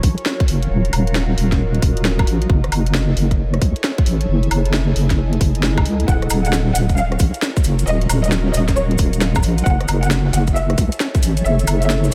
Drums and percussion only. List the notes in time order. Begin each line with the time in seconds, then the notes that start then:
0.03 kick, open hi-hat
0.18 closed hi-hat
0.26 snare
0.40 kick, closed hi-hat
0.48 open hi-hat
0.63 closed hi-hat
0.85 closed hi-hat
0.93 open hi-hat, high woodblock
1.07 closed hi-hat
1.15 snare
1.38 open hi-hat
1.52 kick, snare, closed hi-hat
1.75 closed hi-hat
1.82 kick, open hi-hat
1.97 closed hi-hat
2.05 snare
2.19 kick, closed hi-hat, high woodblock
2.27 open hi-hat
2.42 closed hi-hat
2.50 kick
2.64 cross-stick, closed hi-hat
2.72 open hi-hat, high woodblock
2.86 closed hi-hat
2.94 snare
3.17 open hi-hat
3.31 kick, closed hi-hat
3.54 cross-stick, closed hi-hat
3.62 kick, open hi-hat
3.76 closed hi-hat
3.84 snare
3.98 kick, closed hi-hat
4.06 open hi-hat
4.21 closed hi-hat
4.43 closed hi-hat
4.51 open hi-hat, high woodblock
4.66 closed hi-hat
4.74 snare
4.96 open hi-hat
5.10 kick, snare, closed hi-hat
5.33 closed hi-hat
5.41 kick, open hi-hat
5.55 closed hi-hat
5.63 snare
5.78 kick, closed hi-hat, high woodblock
5.86 open hi-hat
6.00 closed hi-hat
6.08 kick, maracas
6.22 cross-stick, closed hi-hat
6.30 open hi-hat, high woodblock, maracas
6.45 closed hi-hat, maracas
6.53 snare, maracas
6.75 open hi-hat, maracas
6.89 kick, closed hi-hat, maracas
6.97 maracas
7.12 cross-stick, closed hi-hat
7.19 kick, open hi-hat, maracas
7.34 closed hi-hat, maracas
7.42 snare, maracas
7.57 kick, closed hi-hat, maracas
7.64 open hi-hat, maracas
7.79 closed hi-hat, maracas
7.87 maracas
8.01 closed hi-hat
8.09 open hi-hat, high woodblock, maracas
8.24 closed hi-hat, maracas
8.32 snare, maracas
8.54 open hi-hat, maracas
8.68 kick, snare, closed hi-hat, maracas
8.76 maracas
8.91 closed hi-hat
8.98 kick, open hi-hat, maracas
9.13 closed hi-hat, maracas
9.21 snare, maracas
9.35 kick, closed hi-hat, high woodblock, maracas
9.43 open hi-hat, maracas
9.58 closed hi-hat, maracas
9.66 kick, maracas
9.81 cross-stick, closed hi-hat
9.88 open hi-hat, high woodblock, maracas
10.03 closed hi-hat, maracas
10.11 snare, maracas
10.33 open hi-hat, maracas
10.47 kick, closed hi-hat, maracas
10.56 maracas
10.70 cross-stick, closed hi-hat
10.78 kick, open hi-hat, maracas
10.92 closed hi-hat, maracas
11.00 snare, maracas
11.15 kick, closed hi-hat, maracas
11.23 open hi-hat, maracas
11.37 closed hi-hat, maracas
11.45 maracas
11.59 closed hi-hat, maracas
11.67 open hi-hat, high woodblock, maracas
11.82 closed hi-hat, maracas
11.90 snare, maracas
12.04 maracas